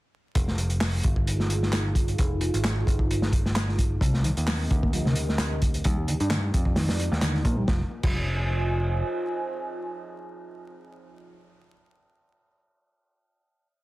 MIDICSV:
0, 0, Header, 1, 5, 480
1, 0, Start_track
1, 0, Tempo, 458015
1, 370, Time_signature, 4, 2, 24, 8
1, 14501, End_track
2, 0, Start_track
2, 0, Title_t, "Analog synth pad"
2, 0, Program_c, 0, 89
2, 369, Note_on_c, 0, 63, 75
2, 369, Note_on_c, 0, 68, 79
2, 370, Note_on_c, 0, 65, 64
2, 4171, Note_off_c, 0, 63, 0
2, 4171, Note_off_c, 0, 65, 0
2, 4171, Note_off_c, 0, 68, 0
2, 4208, Note_on_c, 0, 60, 73
2, 4209, Note_on_c, 0, 75, 81
2, 4210, Note_on_c, 0, 67, 64
2, 4210, Note_on_c, 0, 70, 68
2, 6110, Note_off_c, 0, 60, 0
2, 6110, Note_off_c, 0, 70, 0
2, 6110, Note_off_c, 0, 75, 0
2, 6129, Note_on_c, 0, 63, 77
2, 6131, Note_on_c, 0, 74, 81
2, 8011, Note_off_c, 0, 67, 0
2, 8030, Note_off_c, 0, 63, 0
2, 8031, Note_off_c, 0, 74, 0
2, 8048, Note_on_c, 0, 80, 81
2, 8049, Note_on_c, 0, 72, 70
2, 8049, Note_on_c, 0, 75, 67
2, 8050, Note_on_c, 0, 65, 75
2, 11884, Note_off_c, 0, 72, 0
2, 11884, Note_off_c, 0, 80, 0
2, 11885, Note_off_c, 0, 65, 0
2, 11885, Note_off_c, 0, 75, 0
2, 14501, End_track
3, 0, Start_track
3, 0, Title_t, "Tonewheel organ"
3, 0, Program_c, 1, 16
3, 4207, Note_on_c, 1, 48, 76
3, 4438, Note_off_c, 1, 48, 0
3, 4447, Note_on_c, 1, 51, 74
3, 4517, Note_off_c, 1, 51, 0
3, 4686, Note_on_c, 1, 53, 75
3, 4757, Note_off_c, 1, 53, 0
3, 5058, Note_on_c, 1, 58, 71
3, 5157, Note_off_c, 1, 58, 0
3, 5166, Note_on_c, 1, 53, 80
3, 5293, Note_off_c, 1, 53, 0
3, 5298, Note_on_c, 1, 48, 97
3, 5394, Note_off_c, 1, 48, 0
3, 6129, Note_on_c, 1, 55, 77
3, 6254, Note_off_c, 1, 55, 0
3, 6366, Note_on_c, 1, 50, 71
3, 6436, Note_off_c, 1, 50, 0
3, 6500, Note_on_c, 1, 62, 101
3, 6595, Note_off_c, 1, 62, 0
3, 6607, Note_on_c, 1, 50, 94
3, 6677, Note_off_c, 1, 50, 0
3, 7087, Note_on_c, 1, 51, 86
3, 7214, Note_off_c, 1, 51, 0
3, 7566, Note_on_c, 1, 50, 83
3, 7797, Note_off_c, 1, 50, 0
3, 7806, Note_on_c, 1, 58, 105
3, 7927, Note_off_c, 1, 58, 0
3, 7938, Note_on_c, 1, 55, 102
3, 8037, Note_off_c, 1, 55, 0
3, 8046, Note_on_c, 1, 53, 87
3, 8190, Note_off_c, 1, 53, 0
3, 8419, Note_on_c, 1, 53, 91
3, 8545, Note_off_c, 1, 53, 0
3, 14501, End_track
4, 0, Start_track
4, 0, Title_t, "Picked electric bass"
4, 0, Program_c, 2, 34
4, 372, Note_on_c, 2, 29, 85
4, 1046, Note_off_c, 2, 29, 0
4, 1092, Note_on_c, 2, 31, 83
4, 2247, Note_off_c, 2, 31, 0
4, 2294, Note_on_c, 2, 29, 90
4, 2610, Note_off_c, 2, 29, 0
4, 2660, Note_on_c, 2, 32, 82
4, 2965, Note_off_c, 2, 32, 0
4, 3008, Note_on_c, 2, 31, 83
4, 4165, Note_off_c, 2, 31, 0
4, 4202, Note_on_c, 2, 36, 87
4, 4524, Note_off_c, 2, 36, 0
4, 4582, Note_on_c, 2, 39, 85
4, 4886, Note_off_c, 2, 39, 0
4, 4932, Note_on_c, 2, 38, 84
4, 6086, Note_off_c, 2, 38, 0
4, 6132, Note_on_c, 2, 39, 96
4, 6449, Note_off_c, 2, 39, 0
4, 6502, Note_on_c, 2, 43, 89
4, 6805, Note_off_c, 2, 43, 0
4, 6853, Note_on_c, 2, 41, 86
4, 7452, Note_off_c, 2, 41, 0
4, 7458, Note_on_c, 2, 39, 96
4, 7764, Note_off_c, 2, 39, 0
4, 7805, Note_on_c, 2, 34, 100
4, 7992, Note_off_c, 2, 34, 0
4, 8048, Note_on_c, 2, 29, 91
4, 8191, Note_off_c, 2, 29, 0
4, 8419, Note_on_c, 2, 29, 98
4, 9446, Note_off_c, 2, 29, 0
4, 14501, End_track
5, 0, Start_track
5, 0, Title_t, "Drums"
5, 369, Note_on_c, 9, 42, 79
5, 371, Note_on_c, 9, 36, 94
5, 474, Note_off_c, 9, 42, 0
5, 476, Note_off_c, 9, 36, 0
5, 501, Note_on_c, 9, 38, 45
5, 606, Note_off_c, 9, 38, 0
5, 608, Note_on_c, 9, 42, 57
5, 713, Note_off_c, 9, 42, 0
5, 731, Note_on_c, 9, 42, 39
5, 836, Note_off_c, 9, 42, 0
5, 845, Note_on_c, 9, 38, 115
5, 845, Note_on_c, 9, 46, 78
5, 849, Note_on_c, 9, 39, 100
5, 950, Note_off_c, 9, 38, 0
5, 950, Note_off_c, 9, 46, 0
5, 954, Note_off_c, 9, 39, 0
5, 1083, Note_on_c, 9, 42, 61
5, 1093, Note_on_c, 9, 36, 85
5, 1188, Note_off_c, 9, 42, 0
5, 1198, Note_off_c, 9, 36, 0
5, 1218, Note_on_c, 9, 36, 91
5, 1322, Note_off_c, 9, 36, 0
5, 1334, Note_on_c, 9, 42, 83
5, 1439, Note_off_c, 9, 42, 0
5, 1466, Note_on_c, 9, 38, 41
5, 1571, Note_off_c, 9, 38, 0
5, 1572, Note_on_c, 9, 42, 58
5, 1677, Note_off_c, 9, 42, 0
5, 1706, Note_on_c, 9, 38, 37
5, 1810, Note_on_c, 9, 39, 98
5, 1811, Note_off_c, 9, 38, 0
5, 1813, Note_on_c, 9, 38, 109
5, 1816, Note_on_c, 9, 42, 82
5, 1914, Note_off_c, 9, 39, 0
5, 1918, Note_off_c, 9, 38, 0
5, 1920, Note_off_c, 9, 42, 0
5, 2046, Note_on_c, 9, 36, 82
5, 2051, Note_on_c, 9, 42, 66
5, 2151, Note_off_c, 9, 36, 0
5, 2155, Note_off_c, 9, 42, 0
5, 2181, Note_on_c, 9, 42, 44
5, 2286, Note_off_c, 9, 42, 0
5, 2289, Note_on_c, 9, 42, 73
5, 2294, Note_on_c, 9, 36, 103
5, 2394, Note_off_c, 9, 42, 0
5, 2399, Note_off_c, 9, 36, 0
5, 2524, Note_on_c, 9, 42, 70
5, 2629, Note_off_c, 9, 42, 0
5, 2661, Note_on_c, 9, 42, 42
5, 2766, Note_off_c, 9, 42, 0
5, 2769, Note_on_c, 9, 42, 88
5, 2770, Note_on_c, 9, 38, 122
5, 2771, Note_on_c, 9, 39, 100
5, 2874, Note_off_c, 9, 42, 0
5, 2875, Note_off_c, 9, 38, 0
5, 2875, Note_off_c, 9, 39, 0
5, 3008, Note_on_c, 9, 36, 82
5, 3018, Note_on_c, 9, 42, 60
5, 3113, Note_off_c, 9, 36, 0
5, 3122, Note_off_c, 9, 42, 0
5, 3135, Note_on_c, 9, 36, 96
5, 3239, Note_off_c, 9, 36, 0
5, 3256, Note_on_c, 9, 42, 80
5, 3361, Note_off_c, 9, 42, 0
5, 3377, Note_on_c, 9, 38, 57
5, 3482, Note_off_c, 9, 38, 0
5, 3486, Note_on_c, 9, 36, 95
5, 3490, Note_on_c, 9, 42, 69
5, 3591, Note_off_c, 9, 36, 0
5, 3594, Note_off_c, 9, 42, 0
5, 3623, Note_on_c, 9, 38, 49
5, 3728, Note_off_c, 9, 38, 0
5, 3728, Note_on_c, 9, 42, 80
5, 3729, Note_on_c, 9, 39, 101
5, 3733, Note_on_c, 9, 38, 109
5, 3833, Note_off_c, 9, 42, 0
5, 3834, Note_off_c, 9, 39, 0
5, 3838, Note_off_c, 9, 38, 0
5, 3865, Note_on_c, 9, 38, 36
5, 3969, Note_on_c, 9, 36, 84
5, 3969, Note_on_c, 9, 42, 68
5, 3970, Note_off_c, 9, 38, 0
5, 4073, Note_off_c, 9, 36, 0
5, 4074, Note_off_c, 9, 42, 0
5, 4203, Note_on_c, 9, 36, 101
5, 4214, Note_on_c, 9, 42, 90
5, 4308, Note_off_c, 9, 36, 0
5, 4319, Note_off_c, 9, 42, 0
5, 4337, Note_on_c, 9, 38, 49
5, 4442, Note_off_c, 9, 38, 0
5, 4446, Note_on_c, 9, 42, 63
5, 4551, Note_off_c, 9, 42, 0
5, 4579, Note_on_c, 9, 42, 45
5, 4684, Note_off_c, 9, 42, 0
5, 4688, Note_on_c, 9, 39, 112
5, 4689, Note_on_c, 9, 46, 68
5, 4692, Note_on_c, 9, 38, 108
5, 4793, Note_off_c, 9, 39, 0
5, 4794, Note_off_c, 9, 46, 0
5, 4797, Note_off_c, 9, 38, 0
5, 4932, Note_on_c, 9, 42, 70
5, 4933, Note_on_c, 9, 36, 93
5, 5037, Note_off_c, 9, 42, 0
5, 5038, Note_off_c, 9, 36, 0
5, 5063, Note_on_c, 9, 36, 84
5, 5168, Note_off_c, 9, 36, 0
5, 5168, Note_on_c, 9, 42, 76
5, 5273, Note_off_c, 9, 42, 0
5, 5304, Note_on_c, 9, 38, 45
5, 5403, Note_on_c, 9, 42, 68
5, 5409, Note_off_c, 9, 38, 0
5, 5508, Note_off_c, 9, 42, 0
5, 5544, Note_on_c, 9, 38, 41
5, 5641, Note_off_c, 9, 38, 0
5, 5641, Note_on_c, 9, 38, 122
5, 5649, Note_on_c, 9, 39, 104
5, 5649, Note_on_c, 9, 42, 81
5, 5745, Note_off_c, 9, 38, 0
5, 5754, Note_off_c, 9, 39, 0
5, 5754, Note_off_c, 9, 42, 0
5, 5888, Note_on_c, 9, 42, 69
5, 5891, Note_on_c, 9, 36, 88
5, 5992, Note_off_c, 9, 42, 0
5, 5996, Note_off_c, 9, 36, 0
5, 6017, Note_on_c, 9, 42, 46
5, 6122, Note_off_c, 9, 42, 0
5, 6123, Note_on_c, 9, 42, 83
5, 6133, Note_on_c, 9, 36, 106
5, 6228, Note_off_c, 9, 42, 0
5, 6238, Note_off_c, 9, 36, 0
5, 6372, Note_on_c, 9, 42, 68
5, 6476, Note_off_c, 9, 42, 0
5, 6499, Note_on_c, 9, 42, 43
5, 6604, Note_off_c, 9, 42, 0
5, 6606, Note_on_c, 9, 38, 112
5, 6608, Note_on_c, 9, 39, 104
5, 6611, Note_on_c, 9, 42, 77
5, 6710, Note_off_c, 9, 38, 0
5, 6713, Note_off_c, 9, 39, 0
5, 6715, Note_off_c, 9, 42, 0
5, 6852, Note_on_c, 9, 42, 69
5, 6854, Note_on_c, 9, 36, 88
5, 6957, Note_off_c, 9, 42, 0
5, 6959, Note_off_c, 9, 36, 0
5, 6972, Note_on_c, 9, 36, 94
5, 7077, Note_off_c, 9, 36, 0
5, 7084, Note_on_c, 9, 38, 104
5, 7087, Note_on_c, 9, 46, 68
5, 7189, Note_off_c, 9, 38, 0
5, 7191, Note_off_c, 9, 46, 0
5, 7219, Note_on_c, 9, 38, 103
5, 7221, Note_on_c, 9, 46, 65
5, 7324, Note_off_c, 9, 38, 0
5, 7326, Note_off_c, 9, 46, 0
5, 7333, Note_on_c, 9, 42, 71
5, 7438, Note_off_c, 9, 42, 0
5, 7466, Note_on_c, 9, 38, 46
5, 7563, Note_off_c, 9, 38, 0
5, 7563, Note_on_c, 9, 38, 109
5, 7564, Note_on_c, 9, 42, 95
5, 7568, Note_on_c, 9, 39, 106
5, 7667, Note_off_c, 9, 38, 0
5, 7669, Note_off_c, 9, 42, 0
5, 7673, Note_off_c, 9, 39, 0
5, 7699, Note_on_c, 9, 38, 37
5, 7804, Note_off_c, 9, 38, 0
5, 7806, Note_on_c, 9, 36, 96
5, 7807, Note_on_c, 9, 42, 67
5, 7911, Note_off_c, 9, 36, 0
5, 7912, Note_off_c, 9, 42, 0
5, 8046, Note_on_c, 9, 38, 85
5, 8048, Note_on_c, 9, 36, 109
5, 8151, Note_off_c, 9, 38, 0
5, 8153, Note_off_c, 9, 36, 0
5, 8417, Note_on_c, 9, 49, 83
5, 8420, Note_on_c, 9, 36, 118
5, 8522, Note_off_c, 9, 49, 0
5, 8525, Note_off_c, 9, 36, 0
5, 14501, End_track
0, 0, End_of_file